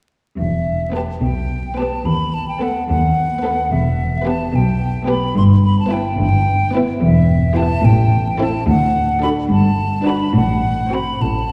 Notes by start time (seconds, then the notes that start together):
0.38 E1 E2 E5
0.94 B3 G4 B4 A5
1.22 B1 B2 G5
1.77 B3 G4 B4 A5
2.05 D#2 B5
2.34 A5
2.48 G5
2.61 B3 A4 B4 F#5
2.88 D#2 F#5
3.43 B3 A4 B4
3.71 E1 E2 E5
4.25 B3 G4 B4 A5
4.53 B1 B2 G5
5.08 B3 G4 B4 B5
5.36 G1 G2 C6
5.64 B5
5.79 A5
5.90 B3 E4 B4 G5
6.18 G1 G2 G5
6.74 B3 E4 B4
7.02 E1 E2 E5
7.56 B3 E4 G4 A5
7.84 A1 A2 G5
8.40 C4 E4 A4 A5
8.67 D2 F#5
9.23 D4 F#4 A4 B5
9.50 G1 G2 A5
10.06 D4 F#4 B4 B5
10.35 A1 A2 F#5
10.92 C4 F#4 C5 B5
11.21 A1 A2 A5